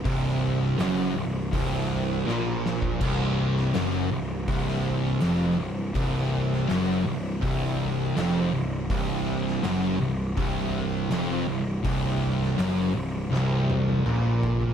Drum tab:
CC |----------------|x---------------|----------------|----------------|
HH |o---o---o-------|----o---o---o---|o---o---o---o---|o---o---o---o---|
SD |----o-------o-o-|---oo----o--o---|---oo-------o---|---oo-------o---|
T1 |----------------|----------------|----------------|----------------|
T2 |----------------|----------------|----------------|----------------|
FT |----------------|----------------|----------------|----------------|
BD |o-------o------o|o-------o-------|o-------o-------|o-------o-------|

CC |----------------|
HH |o---o-----------|
SD |---oo---o-------|
T1 |----------oo----|
T2 |------------o---|
FT |--------------oo|
BD |o---------------|